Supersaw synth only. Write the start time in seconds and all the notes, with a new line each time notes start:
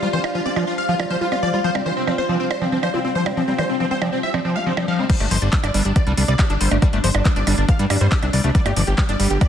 0.02 F4
0.13 C5
0.24 F4
0.35 F4
0.46 D5
0.56 F4
0.67 F4
0.78 F5
0.89 F4
0.99 F4
1.10 C5
1.21 F4
1.32 F4
1.43 D5
1.53 F4
1.64 C5
1.75 C4
1.86 C5
1.97 C4
2.07 C4
2.18 C5
2.29 C4
2.40 C4
2.51 C5
2.61 C4
2.72 C4
2.83 C5
2.94 C4
3.04 C4
3.15 C5
3.26 C4
3.37 C4
3.48 C4
3.58 C5
3.69 C4
3.80 C4
3.91 C5
4.02 C4
4.12 C4
4.23 E5
4.34 C4
4.45 C4
4.56 F5
4.66 C4
4.77 C4
4.88 F5
4.99 C4
5.10 C5
5.20 D4
5.31 C5
5.42 D4
5.53 D4
5.64 D5
5.74 D4
5.85 D4
5.96 D5
6.07 D4
6.18 D4
6.28 D5
6.39 D4
6.50 D4
6.61 C5
6.71 D4
6.82 D4
6.93 D4
7.04 C5
7.15 D4
7.25 D4
7.36 D5
7.47 D4
7.58 D4
7.69 F5
7.79 D4
7.90 D4
8.01 C5
8.12 D4
8.23 D4
8.33 D5
8.44 D4
8.55 D5
8.66 G4
8.76 D5
8.87 G4
8.98 G4
9.09 D5
9.20 G4
9.30 G4
9.41 D5